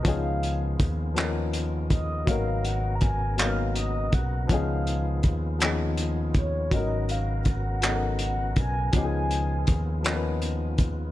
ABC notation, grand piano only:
X:1
M:6/8
L:1/8
Q:3/8=54
K:C#mix
V:1 name="Grand piano"
[E,B,CDG]2 z [E,B,CDA]2 z | [F,A,B,CDA]2 z [F,A,B,CDA]2 z | [E,B,CDG]2 z [E,B,CDG]2 z | [F,B,CDA]2 z [F,B,CD=A^A]2 z |
[E,B,CD=G^G]2 z [E,B,CDAB]2 z |]